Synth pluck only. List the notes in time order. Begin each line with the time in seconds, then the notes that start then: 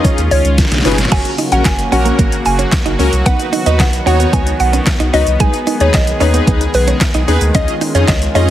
0.04 C#5
0.31 C#5
1.12 G#5
1.52 F#5
1.65 G#5
1.92 F#5
2.46 G#5
3.26 F#5
3.66 D#5
3.80 F#5
4.07 F#5
4.33 G#5
4.60 F#5
5.14 D#5
5.40 G#5
5.81 C#5
5.94 D#5
6.21 C#5
6.75 B4
7.55 D#5
7.95 C#5
8.08 D#5
8.35 D#5